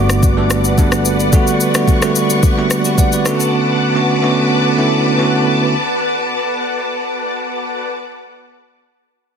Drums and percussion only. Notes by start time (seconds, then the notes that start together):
0.10 cross-stick, shaker
0.23 kick, shaker
0.50 cross-stick, shaker
0.64 shaker
0.78 kick, shaker
0.92 cross-stick, shaker
1.05 shaker
1.20 shaker
1.33 kick, shaker
1.47 shaker
1.60 shaker
1.74 cross-stick, shaker
1.88 kick, shaker
2.02 cross-stick, shaker
2.15 shaker
2.30 shaker
2.43 kick, shaker
2.71 cross-stick, shaker
2.85 shaker
2.98 kick, shaker
3.12 shaker
3.26 cross-stick, shaker
3.40 shaker